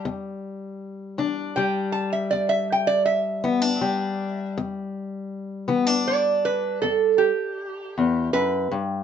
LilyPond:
<<
  \new Staff \with { instrumentName = "Resonator guitar played with a steel bar" } { \time 12/8 \key e \minor \tempo 4. = 53 r2 g''8 a''16 e''16 d''16 e''16 g''16 d''16 e''2 | r2 d''8 b'8 a'8 g'4. b'8 r8 | }
  \new Staff \with { instrumentName = "Steel-string acoustic guitar" } { \clef bass \time 12/8 \key e \minor << { g4. d'8 g2~ g8 b16 d'16 g4~ | g4. b16 d'1~ d'16 | } \\ { e,4 r8 e4 r8 e,4 r8 e4 r8 | e,4 r8 e4 r8 e,4 r8 e,8 fis,8 g,8 | } >> }
>>